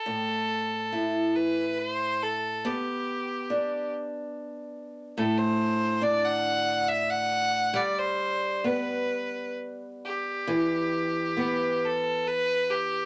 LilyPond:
<<
  \new Staff \with { instrumentName = "Fiddle" } { \time 3/4 \key a \dorian \tempo 4 = 70 a'4. b'8 c''8 a'8 | g'4. r4. | a'16 c''8. d''16 fis''8. e''16 fis''8. | d''16 c''8. b'4 r8 g'8~ |
g'4. a'8 b'8 g'8 | }
  \new Staff \with { instrumentName = "Steel-string acoustic guitar" } { \time 3/4 \key a \dorian a,4 e'2 | b4 d'2 | a,4 d'2 | g4 b2 |
e4 b2 | }
>>